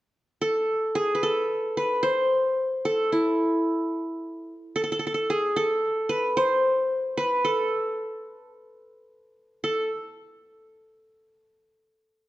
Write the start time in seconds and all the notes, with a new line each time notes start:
0.41 A4
0.95 G#4
1.15 B4
1.23 A4
1.77 B4
2.03 C5
2.85 A4
3.12 E4
4.76 A4
4.84 A4
4.92 A4
4.99 A4
5.07 A4
5.14 A4
5.30 G#4
5.56 A4
6.09 B4
6.37 C5
7.17 B4
7.45 A4
9.64 A4